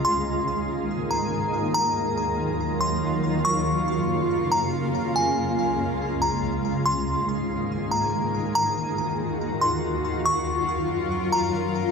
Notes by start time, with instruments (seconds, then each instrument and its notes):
0.04 ambient pad G#2 D#3 A#3 G#4, synth bell C6
1.11 synth bell A#5
1.74 ambient pad D#2 D#3 F#3 F4, synth bell A#5
2.81 synth bell C6
3.45 ambient pad F#2 C#3 A#3, synth bell C#6
4.52 synth bell A#5
5.15 ambient pad C#2 G#3 F4, synth bell G#5
6.22 synth bell A#5
6.85 ambient pad G#2 D#3 A#3 G#4, synth bell C6
7.91 synth bell A#5
8.55 ambient pad D#2 D#3 F4 F#4, synth bell A#5
9.61 synth bell C6
10.26 ambient pad F#2 F#3 A#4, synth bell C#6
11.32 synth bell A#5